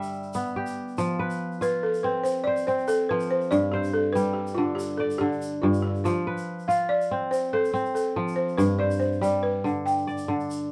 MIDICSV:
0, 0, Header, 1, 4, 480
1, 0, Start_track
1, 0, Tempo, 422833
1, 1115, Time_signature, 12, 3, 24, 8
1, 12168, End_track
2, 0, Start_track
2, 0, Title_t, "Balafon"
2, 0, Program_c, 0, 12
2, 1841, Note_on_c, 0, 71, 96
2, 2078, Note_on_c, 0, 69, 85
2, 2087, Note_off_c, 0, 71, 0
2, 2307, Note_on_c, 0, 71, 80
2, 2326, Note_off_c, 0, 69, 0
2, 2536, Note_off_c, 0, 71, 0
2, 2537, Note_on_c, 0, 72, 99
2, 2766, Note_on_c, 0, 74, 105
2, 2796, Note_off_c, 0, 72, 0
2, 3031, Note_off_c, 0, 74, 0
2, 3031, Note_on_c, 0, 72, 99
2, 3258, Note_off_c, 0, 72, 0
2, 3267, Note_on_c, 0, 69, 104
2, 3496, Note_off_c, 0, 69, 0
2, 3511, Note_on_c, 0, 71, 88
2, 3738, Note_off_c, 0, 71, 0
2, 3752, Note_on_c, 0, 72, 90
2, 3981, Note_on_c, 0, 74, 105
2, 4004, Note_off_c, 0, 72, 0
2, 4218, Note_on_c, 0, 67, 98
2, 4238, Note_off_c, 0, 74, 0
2, 4451, Note_off_c, 0, 67, 0
2, 4466, Note_on_c, 0, 69, 93
2, 4683, Note_on_c, 0, 71, 101
2, 4720, Note_off_c, 0, 69, 0
2, 4920, Note_on_c, 0, 67, 79
2, 4949, Note_off_c, 0, 71, 0
2, 5160, Note_on_c, 0, 65, 81
2, 5162, Note_off_c, 0, 67, 0
2, 5392, Note_on_c, 0, 67, 92
2, 5427, Note_off_c, 0, 65, 0
2, 5637, Note_off_c, 0, 67, 0
2, 5647, Note_on_c, 0, 69, 75
2, 5885, Note_on_c, 0, 67, 91
2, 5910, Note_off_c, 0, 69, 0
2, 6376, Note_on_c, 0, 65, 83
2, 6396, Note_off_c, 0, 67, 0
2, 6611, Note_on_c, 0, 67, 88
2, 6634, Note_off_c, 0, 65, 0
2, 6858, Note_on_c, 0, 65, 84
2, 6871, Note_off_c, 0, 67, 0
2, 7090, Note_off_c, 0, 65, 0
2, 7581, Note_on_c, 0, 77, 93
2, 7822, Note_on_c, 0, 74, 93
2, 7835, Note_off_c, 0, 77, 0
2, 8299, Note_on_c, 0, 72, 93
2, 8322, Note_off_c, 0, 74, 0
2, 8549, Note_on_c, 0, 69, 86
2, 8554, Note_off_c, 0, 72, 0
2, 9010, Note_off_c, 0, 69, 0
2, 9023, Note_on_c, 0, 69, 78
2, 9489, Note_on_c, 0, 72, 80
2, 9522, Note_off_c, 0, 69, 0
2, 9602, Note_off_c, 0, 72, 0
2, 9735, Note_on_c, 0, 71, 104
2, 9974, Note_on_c, 0, 74, 94
2, 9990, Note_off_c, 0, 71, 0
2, 10211, Note_on_c, 0, 72, 89
2, 10230, Note_off_c, 0, 74, 0
2, 10461, Note_on_c, 0, 74, 102
2, 10468, Note_off_c, 0, 72, 0
2, 10703, Note_on_c, 0, 71, 93
2, 10713, Note_off_c, 0, 74, 0
2, 11153, Note_off_c, 0, 71, 0
2, 11189, Note_on_c, 0, 79, 89
2, 12168, Note_off_c, 0, 79, 0
2, 12168, End_track
3, 0, Start_track
3, 0, Title_t, "Kora"
3, 0, Program_c, 1, 46
3, 0, Note_on_c, 1, 43, 83
3, 0, Note_on_c, 1, 50, 57
3, 0, Note_on_c, 1, 55, 86
3, 0, Note_on_c, 1, 67, 63
3, 0, Note_on_c, 1, 69, 58
3, 0, Note_on_c, 1, 76, 63
3, 198, Note_off_c, 1, 69, 0
3, 396, Note_on_c, 1, 59, 67
3, 634, Note_off_c, 1, 67, 0
3, 638, Note_on_c, 1, 67, 64
3, 875, Note_off_c, 1, 43, 0
3, 1093, Note_off_c, 1, 76, 0
3, 1114, Note_on_c, 1, 53, 90
3, 1172, Note_off_c, 1, 50, 0
3, 1172, Note_off_c, 1, 55, 0
3, 1355, Note_on_c, 1, 71, 74
3, 1829, Note_on_c, 1, 65, 64
3, 2242, Note_off_c, 1, 67, 0
3, 2317, Note_on_c, 1, 60, 82
3, 2385, Note_off_c, 1, 59, 0
3, 2385, Note_off_c, 1, 71, 0
3, 2807, Note_on_c, 1, 72, 68
3, 3038, Note_off_c, 1, 60, 0
3, 3042, Note_on_c, 1, 60, 74
3, 3512, Note_off_c, 1, 53, 0
3, 3526, Note_on_c, 1, 53, 82
3, 3547, Note_off_c, 1, 65, 0
3, 3991, Note_on_c, 1, 43, 85
3, 4057, Note_off_c, 1, 53, 0
3, 4155, Note_off_c, 1, 72, 0
3, 4238, Note_on_c, 1, 72, 72
3, 4714, Note_on_c, 1, 55, 75
3, 5086, Note_off_c, 1, 60, 0
3, 5196, Note_on_c, 1, 50, 82
3, 5256, Note_off_c, 1, 55, 0
3, 5586, Note_off_c, 1, 72, 0
3, 5673, Note_on_c, 1, 74, 74
3, 5899, Note_off_c, 1, 50, 0
3, 5912, Note_on_c, 1, 50, 70
3, 6380, Note_off_c, 1, 43, 0
3, 6393, Note_on_c, 1, 43, 81
3, 6871, Note_on_c, 1, 53, 92
3, 6931, Note_off_c, 1, 74, 0
3, 6934, Note_off_c, 1, 43, 0
3, 6934, Note_off_c, 1, 50, 0
3, 7117, Note_on_c, 1, 71, 68
3, 7588, Note_on_c, 1, 65, 76
3, 8075, Note_on_c, 1, 60, 77
3, 8144, Note_off_c, 1, 71, 0
3, 8549, Note_on_c, 1, 72, 70
3, 8777, Note_off_c, 1, 60, 0
3, 8781, Note_on_c, 1, 60, 81
3, 9253, Note_off_c, 1, 53, 0
3, 9267, Note_on_c, 1, 53, 83
3, 9307, Note_off_c, 1, 65, 0
3, 9742, Note_on_c, 1, 43, 90
3, 9808, Note_off_c, 1, 53, 0
3, 9898, Note_off_c, 1, 72, 0
3, 9984, Note_on_c, 1, 72, 66
3, 10461, Note_on_c, 1, 55, 70
3, 10825, Note_off_c, 1, 60, 0
3, 10947, Note_on_c, 1, 50, 78
3, 11007, Note_off_c, 1, 55, 0
3, 11332, Note_off_c, 1, 72, 0
3, 11435, Note_on_c, 1, 74, 72
3, 11660, Note_off_c, 1, 50, 0
3, 11673, Note_on_c, 1, 50, 79
3, 12146, Note_off_c, 1, 43, 0
3, 12168, Note_off_c, 1, 50, 0
3, 12168, Note_off_c, 1, 74, 0
3, 12168, End_track
4, 0, Start_track
4, 0, Title_t, "Drums"
4, 30, Note_on_c, 9, 82, 46
4, 143, Note_off_c, 9, 82, 0
4, 148, Note_on_c, 9, 82, 21
4, 260, Note_off_c, 9, 82, 0
4, 260, Note_on_c, 9, 82, 19
4, 373, Note_off_c, 9, 82, 0
4, 380, Note_on_c, 9, 82, 73
4, 493, Note_off_c, 9, 82, 0
4, 511, Note_on_c, 9, 82, 21
4, 625, Note_off_c, 9, 82, 0
4, 753, Note_on_c, 9, 82, 53
4, 866, Note_off_c, 9, 82, 0
4, 997, Note_on_c, 9, 82, 20
4, 1110, Note_off_c, 9, 82, 0
4, 1110, Note_on_c, 9, 82, 61
4, 1224, Note_off_c, 9, 82, 0
4, 1477, Note_on_c, 9, 82, 43
4, 1591, Note_off_c, 9, 82, 0
4, 1725, Note_on_c, 9, 82, 20
4, 1838, Note_off_c, 9, 82, 0
4, 1840, Note_on_c, 9, 82, 65
4, 1953, Note_off_c, 9, 82, 0
4, 2202, Note_on_c, 9, 82, 47
4, 2316, Note_off_c, 9, 82, 0
4, 2554, Note_on_c, 9, 82, 65
4, 2668, Note_off_c, 9, 82, 0
4, 2680, Note_on_c, 9, 82, 17
4, 2793, Note_off_c, 9, 82, 0
4, 2912, Note_on_c, 9, 82, 47
4, 3026, Note_off_c, 9, 82, 0
4, 3038, Note_on_c, 9, 82, 20
4, 3152, Note_off_c, 9, 82, 0
4, 3161, Note_on_c, 9, 82, 20
4, 3269, Note_off_c, 9, 82, 0
4, 3269, Note_on_c, 9, 82, 71
4, 3382, Note_off_c, 9, 82, 0
4, 3632, Note_on_c, 9, 82, 43
4, 3745, Note_off_c, 9, 82, 0
4, 3873, Note_on_c, 9, 82, 18
4, 3987, Note_off_c, 9, 82, 0
4, 3992, Note_on_c, 9, 82, 52
4, 4106, Note_off_c, 9, 82, 0
4, 4355, Note_on_c, 9, 82, 47
4, 4469, Note_off_c, 9, 82, 0
4, 4721, Note_on_c, 9, 82, 60
4, 4835, Note_off_c, 9, 82, 0
4, 5076, Note_on_c, 9, 82, 48
4, 5189, Note_off_c, 9, 82, 0
4, 5439, Note_on_c, 9, 82, 68
4, 5552, Note_off_c, 9, 82, 0
4, 5555, Note_on_c, 9, 82, 19
4, 5668, Note_off_c, 9, 82, 0
4, 5794, Note_on_c, 9, 82, 52
4, 5907, Note_off_c, 9, 82, 0
4, 6041, Note_on_c, 9, 82, 20
4, 6150, Note_off_c, 9, 82, 0
4, 6150, Note_on_c, 9, 82, 74
4, 6264, Note_off_c, 9, 82, 0
4, 6512, Note_on_c, 9, 82, 53
4, 6625, Note_off_c, 9, 82, 0
4, 6753, Note_on_c, 9, 82, 21
4, 6867, Note_off_c, 9, 82, 0
4, 6873, Note_on_c, 9, 82, 72
4, 6986, Note_off_c, 9, 82, 0
4, 7238, Note_on_c, 9, 82, 55
4, 7352, Note_off_c, 9, 82, 0
4, 7484, Note_on_c, 9, 82, 21
4, 7597, Note_off_c, 9, 82, 0
4, 7605, Note_on_c, 9, 82, 73
4, 7719, Note_off_c, 9, 82, 0
4, 7963, Note_on_c, 9, 82, 55
4, 8076, Note_off_c, 9, 82, 0
4, 8319, Note_on_c, 9, 82, 72
4, 8432, Note_off_c, 9, 82, 0
4, 8433, Note_on_c, 9, 82, 21
4, 8546, Note_off_c, 9, 82, 0
4, 8683, Note_on_c, 9, 82, 53
4, 8797, Note_off_c, 9, 82, 0
4, 8797, Note_on_c, 9, 82, 22
4, 8910, Note_off_c, 9, 82, 0
4, 8917, Note_on_c, 9, 82, 21
4, 9030, Note_off_c, 9, 82, 0
4, 9036, Note_on_c, 9, 82, 65
4, 9150, Note_off_c, 9, 82, 0
4, 9400, Note_on_c, 9, 82, 53
4, 9514, Note_off_c, 9, 82, 0
4, 9633, Note_on_c, 9, 82, 19
4, 9746, Note_off_c, 9, 82, 0
4, 9751, Note_on_c, 9, 82, 61
4, 9865, Note_off_c, 9, 82, 0
4, 10111, Note_on_c, 9, 82, 52
4, 10224, Note_off_c, 9, 82, 0
4, 10230, Note_on_c, 9, 82, 22
4, 10343, Note_off_c, 9, 82, 0
4, 10356, Note_on_c, 9, 82, 21
4, 10470, Note_off_c, 9, 82, 0
4, 10478, Note_on_c, 9, 82, 64
4, 10591, Note_off_c, 9, 82, 0
4, 10959, Note_on_c, 9, 82, 24
4, 11073, Note_off_c, 9, 82, 0
4, 11208, Note_on_c, 9, 82, 67
4, 11322, Note_off_c, 9, 82, 0
4, 11328, Note_on_c, 9, 82, 20
4, 11441, Note_off_c, 9, 82, 0
4, 11444, Note_on_c, 9, 82, 21
4, 11552, Note_off_c, 9, 82, 0
4, 11552, Note_on_c, 9, 82, 52
4, 11666, Note_off_c, 9, 82, 0
4, 11806, Note_on_c, 9, 82, 22
4, 11919, Note_off_c, 9, 82, 0
4, 11925, Note_on_c, 9, 82, 73
4, 12039, Note_off_c, 9, 82, 0
4, 12168, End_track
0, 0, End_of_file